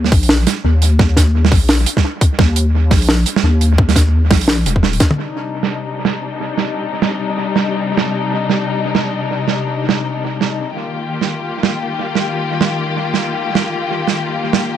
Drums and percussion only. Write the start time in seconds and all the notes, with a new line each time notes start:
0.04 snare
0.12 kick, open hi-hat
0.23 open hi-hat
0.29 snare
0.47 snare, closed hi-hat
0.82 closed hi-hat
0.99 kick, snare
1.17 kick, snare, closed hi-hat
1.45 snare
1.52 kick, open hi-hat
1.69 snare, open hi-hat
1.86 closed hi-hat
1.97 kick, snare
2.21 kick, closed hi-hat
2.39 kick, snare
2.56 closed hi-hat
2.91 kick, snare, open hi-hat
3.02 open hi-hat
3.09 snare
3.26 closed hi-hat
3.36 snare
3.61 closed hi-hat
3.78 kick
3.89 snare, open hi-hat
3.96 kick, snare, closed hi-hat
4.31 kick, snare, open hi-hat
4.41 open hi-hat
4.48 snare
4.66 closed hi-hat
4.76 kick
4.83 snare
4.93 open hi-hat
5.00 kick, snare, closed hi-hat
5.11 mid tom
5.63 snare
6.05 snare
6.58 snare
7.02 snare
7.56 snare
7.97 snare
8.49 snare
8.95 snare
9.48 snare
9.89 snare
10.41 snare
11.21 snare
11.63 snare
12.15 snare
12.61 snare
13.14 snare
13.55 snare
14.07 snare
14.53 snare